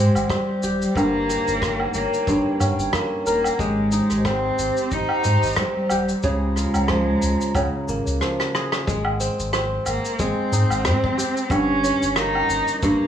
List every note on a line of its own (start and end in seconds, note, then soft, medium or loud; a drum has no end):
0.00 0.31 G#3 loud
0.00 0.67 G#3 medium
0.00 0.30 C4 medium
0.00 1.04 D#4 medium
0.00 0.62 G4 medium
0.00 0.94 G4 medium
0.00 0.94 C5 medium
0.15 0.25 G#1 loud
0.15 low woodblock medium
0.15 shaker soft
0.29 0.97 G3 medium
0.29 2.10 C4 medium
0.29 kick medium
0.29 cross-stick medium
0.29 shaker soft
0.63 0.87 D#1 medium
0.63 1.29 G4 medium
0.63 shaker medium
0.82 shaker medium
0.95 1.38 G1 loud
0.95 2.27 G2 medium
0.95 1.94 A#3 loud
0.95 3.57 D#4 medium
0.95 3.25 A#4 medium
0.95 3.57 C#5 medium
0.95 3.57 G5 medium
0.95 kick medium
0.95 low woodblock medium
0.95 shaker soft
1.29 3.59 G4 medium
1.29 cross-stick soft
1.29 shaker medium
1.47 1.87 G1 loud
1.47 shaker medium
1.62 2.93 A#3 medium
1.62 kick loud
1.62 cross-stick medium
1.62 shaker soft
1.80 low woodblock medium
1.94 2.07 G1 medium
1.94 2.56 A#3 medium
1.94 shaker medium
2.14 shaker soft
2.27 2.40 G1 medium
2.27 3.65 G2 medium
2.27 kick loud
2.27 shaker soft
2.60 2.73 G2 medium
2.60 4.31 C#4 medium
2.60 low woodblock medium
2.60 shaker medium
2.78 2.89 G1 loud
2.78 shaker soft
2.93 4.87 A#3 medium
2.93 kick medium
2.93 cross-stick medium
2.93 shaker medium
3.26 3.50 D#1 medium
3.26 3.62 A#3 medium
3.26 4.54 A#4 medium
3.26 shaker medium
3.44 low woodblock medium
3.44 shaker medium
3.59 4.01 G#1 medium
3.59 5.66 G#3 medium
3.59 4.28 G#3 loud
3.59 6.21 G4 medium
3.59 5.90 G4 medium
3.59 6.21 C5 medium
3.59 kick medium
3.59 shaker soft
3.92 6.31 D#4 medium
3.92 shaker medium
4.10 4.51 G#1 medium
4.10 cross-stick soft
4.10 shaker medium
4.25 5.24 C4 medium
4.25 4.95 C4 loud
4.25 kick loud
4.25 cross-stick medium
4.25 low woodblock medium
4.25 shaker soft
4.58 4.71 G#1 medium
4.58 shaker medium
4.77 shaker soft
4.91 5.04 G#1 medium
4.91 5.61 D#4 loud
4.91 kick medium
4.91 shaker soft
5.09 low woodblock medium
5.24 5.37 G#2 medium
5.24 5.57 C4 medium
5.24 shaker medium
5.43 5.53 G#1 loud
5.43 shaker soft
5.45 shaker soft
5.50 shaker soft
5.53 shaker soft
5.55 kick medium
5.55 cross-stick loud
5.55 shaker soft
5.57 5.67 G3 medium
5.57 7.38 C4 medium
5.57 shaker soft
5.66 5.76 G#3 medium
5.75 6.24 G3 medium
5.89 6.14 D#1 medium
5.89 6.30 G4 medium
5.89 low woodblock medium
5.89 shaker medium
6.09 shaker medium
6.23 6.65 C#2 medium
6.23 7.54 C#3 medium
6.23 8.18 G#3 loud
6.23 8.19 F4 medium
6.23 8.53 G#4 medium
6.23 8.19 C#5 medium
6.23 8.19 A#5 medium
6.23 kick medium
6.23 shaker soft
6.56 8.95 F4 medium
6.56 cross-stick soft
6.56 shaker medium
6.74 7.15 C#2 loud
6.74 low woodblock medium
6.74 shaker medium
6.88 7.60 F3 medium
6.88 kick loud
6.88 cross-stick medium
7.22 7.35 C#2 loud
7.22 shaker medium
7.41 shaker medium
7.54 7.67 C#2 medium
7.54 8.92 C#3 medium
7.54 kick medium
7.54 low woodblock medium
7.54 shaker medium
7.88 8.01 G#1 medium
7.88 9.81 A#3 medium
7.88 shaker medium
8.06 8.21 C#2 loud
8.06 shaker medium
8.21 8.92 F3 medium
8.21 cross-stick medium
8.40 cross-stick medium
8.55 9.91 G#4 medium
8.55 cross-stick medium
8.72 cross-stick medium
8.87 9.29 G#1 loud
8.87 10.18 G#3 medium
8.87 kick loud
8.87 shaker soft
9.05 low woodblock medium
9.20 9.53 C4 medium
9.20 shaker medium
9.39 9.79 G#1 medium
9.39 shaker medium
9.53 10.85 C4 medium
9.53 cross-stick medium
9.53 shaker soft
9.86 9.99 G#1 loud
9.86 10.21 A#3 medium
9.86 low woodblock medium
9.86 shaker medium
10.05 shaker medium
10.19 10.32 G#1 medium
10.19 11.56 G#3 medium
10.19 11.53 C4 loud
10.19 kick medium
10.19 shaker medium
10.52 10.65 G#2 medium
10.52 12.15 D#4 medium
10.52 shaker medium
10.70 10.86 G#1 loud
10.70 low woodblock medium
10.70 shaker medium
10.85 10.97 G#2 medium
10.85 11.89 C4 medium
10.85 cross-stick loud
10.85 shaker medium
11.04 kick medium
11.17 12.59 G4 medium
11.17 shaker medium
11.37 shaker medium
11.50 11.92 G1 loud
11.50 12.82 G2 medium
11.50 12.18 C#4 loud
11.50 kick loud
11.50 low woodblock medium
11.50 shaker medium
11.83 13.07 C#4 medium
11.83 cross-stick soft
11.83 shaker medium
12.02 12.42 G1 medium
12.02 shaker medium
12.16 13.07 A#3 medium
12.16 12.81 D#4 loud
12.16 cross-stick loud
12.16 shaker soft
12.35 low woodblock medium
12.49 12.62 G1 loud
12.49 shaker medium
12.68 shaker medium
12.81 12.95 G1 loud
12.81 13.07 G2 medium
12.81 13.07 A#3 loud
12.81 kick loud
12.81 shaker medium